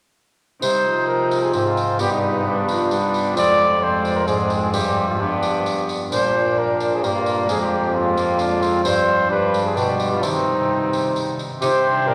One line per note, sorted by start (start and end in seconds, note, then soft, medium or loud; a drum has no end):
0.59 2.01 C3 soft
0.59 1.50 C3 medium
0.59 0.87 G3 medium
0.59 2.00 C4 soft
0.59 2.01 D#4 soft
0.59 1.54 D#4 medium
0.59 1.05 C5 medium
0.59 tambourine medium
0.85 2.02 F3 medium
1.08 1.44 A#4 medium
1.31 tambourine soft
1.43 1.54 G#4 medium
1.53 2.01 G#2 medium
1.53 1.99 C4 medium
1.53 1.65 G4 medium
1.53 tambourine soft
1.66 2.02 F4 medium
1.77 tambourine soft
1.96 3.37 G2 soft
1.96 3.35 G2 medium
1.96 2.41 B3 soft
1.96 2.89 B3 medium
1.96 2.11 G4 loud
1.96 3.37 D5 soft
1.96 tambourine medium
2.01 2.46 G3 medium
2.12 2.49 D#4 medium
2.43 2.68 G3 medium
2.43 3.37 B3 soft
2.43 3.37 D4 soft
2.48 3.37 D4 medium
2.69 2.93 F3 medium
2.69 tambourine soft
2.91 3.36 G3 medium
2.91 3.35 B3 medium
2.91 tambourine medium
3.14 tambourine soft
3.32 4.75 F2 medium
3.32 4.28 F2 medium
3.32 4.73 G#3 soft
3.32 4.69 C4 soft
3.32 3.78 C4 medium
3.32 4.74 F4 soft
3.37 3.79 G#3 medium
3.37 3.85 D5 loud
3.37 tambourine medium
3.81 4.26 G#3 medium
3.81 4.26 C4 medium
3.81 4.18 C5 medium
4.05 tambourine soft
4.17 4.29 A#4 medium
4.26 4.74 G#2 medium
4.26 4.72 G#2 medium
4.26 4.75 G#3 medium
4.26 4.72 C4 medium
4.26 4.62 G#4 medium
4.26 tambourine medium
4.50 tambourine soft
4.62 4.72 G#4 medium
4.70 5.17 G2 soft
4.70 5.18 G2 medium
4.70 5.19 G3 medium
4.70 5.19 C4 soft
4.70 5.23 C4 medium
4.70 5.16 D4 soft
4.70 5.07 G4 medium
4.70 tambourine medium
5.10 5.21 F4 medium
5.16 6.13 G2 soft
5.16 5.87 G2 medium
5.16 6.12 B3 soft
5.16 6.09 D4 soft
5.16 5.65 G4 medium
5.20 5.91 B3 medium
5.20 5.90 D4 medium
5.43 tambourine soft
5.66 tambourine soft
5.89 tambourine soft
6.09 7.05 A#2 medium
6.09 7.50 A#2 soft
6.09 6.37 G3 medium
6.09 7.49 A#3 soft
6.09 7.50 D4 soft
6.09 7.05 D4 medium
6.09 6.60 C5 loud
6.09 tambourine medium
6.35 7.03 F3 medium
6.59 6.96 A#4 medium
6.80 tambourine soft
6.94 7.05 G#4 medium
7.03 7.48 G2 medium
7.03 7.50 G2 medium
7.03 7.96 A#3 medium
7.03 7.51 A#3 medium
7.03 7.14 G4 medium
7.03 tambourine soft
7.15 7.50 F4 medium
7.26 tambourine soft
7.46 8.82 F2 medium
7.46 8.87 F2 soft
7.46 7.89 G#3 soft
7.46 7.94 G#3 medium
7.46 7.91 C4 soft
7.46 7.92 F4 soft
7.46 7.60 G#4 medium
7.46 tambourine medium
7.61 7.94 G4 medium
7.90 8.85 G#3 soft
7.90 8.81 C4 soft
7.90 8.86 F4 soft
7.95 8.18 G#3 medium
7.95 8.40 C4 medium
7.95 8.83 F4 medium
8.17 8.41 A#3 medium
8.17 tambourine medium
8.39 8.87 G#3 medium
8.39 8.64 D4 medium
8.39 tambourine medium
8.62 8.83 C4 medium
8.62 tambourine soft
8.82 9.29 G2 medium
8.82 9.30 G3 medium
8.82 9.31 C4 soft
8.82 9.32 C4 medium
8.82 9.26 D4 medium
8.82 9.29 C5 loud
8.82 tambourine medium
9.27 10.24 G2 medium
9.27 9.78 G2 medium
9.27 9.75 G3 medium
9.27 10.23 D4 soft
9.27 9.74 D4 medium
9.27 9.64 B4 medium
9.54 tambourine soft
9.65 9.79 G#4 medium
9.75 10.24 B2 medium
9.75 10.21 G3 medium
9.75 10.24 D4 medium
9.75 10.12 G4 medium
9.75 tambourine soft
10.00 tambourine soft
10.13 10.23 F4 medium
10.21 11.39 C3 medium
10.21 11.61 C3 soft
10.21 12.14 D#3 soft
10.21 11.39 G3 medium
10.21 11.58 C4 soft
10.21 11.39 C4 medium
10.21 11.38 D#4 medium
10.21 tambourine medium
10.93 tambourine soft
11.16 tambourine soft
11.39 tambourine soft
11.59 12.08 C3 medium
11.59 12.14 C3 medium
11.59 12.14 C4 medium
11.59 11.70 D#4 medium
11.59 12.14 G4 soft
11.59 12.04 G4 medium
11.59 12.09 C5 loud
11.59 tambourine medium
11.85 12.14 D4 medium
12.07 12.14 A#2 medium
12.07 12.14 G4 medium
12.07 12.14 A#4 medium